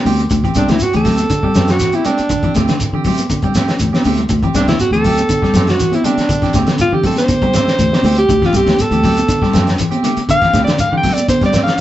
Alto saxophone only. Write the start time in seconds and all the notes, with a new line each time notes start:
0.57 D4
0.70 E4
0.83 F#4
0.96 A4
1.71 F#4
1.95 E4
2.06 D4
4.56 D4
4.68 E4
4.80 F#4
4.92 A4
5.69 F#4
5.94 E4
6.05 D4
6.81 F4
6.94 G4
7.06 A4
7.18 C5
8.18 G4
8.46 F4
8.56 G4
8.81 A4
10.31 F5
10.64 D5
10.80 F5
10.97 G5
11.14 D5
11.29 C5
11.46 D5
11.63 F5